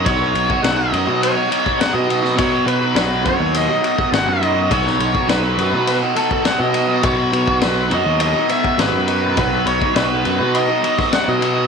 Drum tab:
RD |x-x-x-x-x-x-x-x-|x-x-x-x-x-x-x-x-|x-x-x-x-x-x-x-x-|x-x-x-x-x-x-x-x-|
SD |----o-------o--o|----o-------o---|-o--o-------o---|----o-------o---|
BD |o--o-------o----|o-----o----o----|o--o-------o----|o--o-------o----|

RD |x-x-x-x-x-x-x-x-|
SD |----o------oo---|
BD |o--o-------o----|